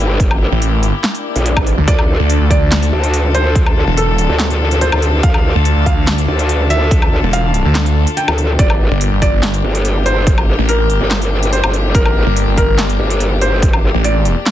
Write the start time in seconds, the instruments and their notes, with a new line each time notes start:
Already playing: wobble bass G1, string section A#3 E4 G4
0.20 kick, closed hi-hat
0.31 low woodblock
0.41 wobble bass G1
0.52 detuned saw bass A1
0.62 closed hi-hat
0.83 closed hi-hat
1.04 snare, clap, closed hi-hat, swell
1.15 closed hi-hat
1.36 wobble bass A#1, closed hi-hat
1.46 closed hi-hat
1.57 kick, low woodblock
1.67 closed hi-hat
1.78 detuned saw bass D2
1.88 wobble bass D2, string section D3 D4 F4 A4, felt piano D5, kick, closed hi-hat
1.99 low woodblock
2.20 detuned saw bass D2
2.30 closed hi-hat
2.41 detuned saw bass D2
2.51 felt piano D5, kick, closed hi-hat
2.72 detuned saw bass D2, snare, clap, closed hi-hat
2.83 closed hi-hat
2.93 wobble bass D2
3.04 closed hi-hat
3.14 closed hi-hat
3.35 felt piano C5, closed hi-hat
3.55 kick, closed hi-hat
3.66 low woodblock
3.77 wobble bass D2
3.87 detuned saw bass E1
3.98 felt piano A4, closed hi-hat
4.18 closed hi-hat
4.29 wobble bass D2
4.39 snare, clap, closed hi-hat
4.50 closed hi-hat
4.71 closed hi-hat
4.81 felt piano C5, closed hi-hat
4.92 wobble bass D2, low woodblock
5.02 closed hi-hat
5.23 wobble bass D2, felt piano F5, kick, closed hi-hat
5.34 low woodblock
5.55 detuned saw bass D2
5.65 closed hi-hat
5.76 detuned saw bass D2
5.86 felt piano F5, kick, closed hi-hat
6.07 detuned saw bass D2, snare, clap, closed hi-hat
6.18 closed hi-hat
6.28 wobble bass D2
6.39 closed hi-hat
6.49 closed hi-hat
6.70 felt piano E5, closed hi-hat
6.91 kick, closed hi-hat
7.02 low woodblock
7.12 wobble bass D2
7.23 detuned saw bass E1
7.33 felt piano F5, closed hi-hat
7.54 closed hi-hat
7.65 detuned saw bass D2
7.75 snare, clap, closed hi-hat
7.86 closed hi-hat
8.07 closed hi-hat
8.17 felt piano G5, closed hi-hat
8.28 wobble bass D2, low woodblock
8.38 closed hi-hat
8.59 wobble bass G1, string section A#3 D4 G4, felt piano D5, kick, closed hi-hat
8.70 low woodblock
8.91 detuned saw bass G1
9.01 closed hi-hat
9.12 detuned saw bass G1
9.22 felt piano D5, kick, closed hi-hat
9.43 detuned saw bass G1, snare, clap, closed hi-hat
9.54 closed hi-hat
9.64 wobble bass G1
9.75 closed hi-hat
9.85 closed hi-hat
10.06 felt piano C5, closed hi-hat
10.27 kick, closed hi-hat
10.38 low woodblock
10.48 wobble bass G1
10.59 detuned saw bass A1
10.69 felt piano A#4, closed hi-hat
10.90 closed hi-hat
11.01 wobble bass G1
11.11 snare, clap, closed hi-hat
11.22 closed hi-hat
11.43 closed hi-hat
11.53 felt piano C5, closed hi-hat
11.64 wobble bass G1, low woodblock
11.74 closed hi-hat
11.95 wobble bass G1, felt piano A#4, kick, closed hi-hat
12.06 low woodblock
12.27 detuned saw bass G1
12.37 closed hi-hat
12.48 detuned saw bass G1
12.58 felt piano A#4, kick, closed hi-hat
12.79 detuned saw bass G1, snare, clap, closed hi-hat
12.90 closed hi-hat
13.00 wobble bass G1
13.10 closed hi-hat
13.21 closed hi-hat
13.42 felt piano C5, closed hi-hat
13.62 kick, closed hi-hat
13.73 low woodblock
13.83 wobble bass G1
13.94 detuned saw bass A1
14.04 felt piano D5, closed hi-hat
14.25 closed hi-hat
14.46 snare, clap, closed hi-hat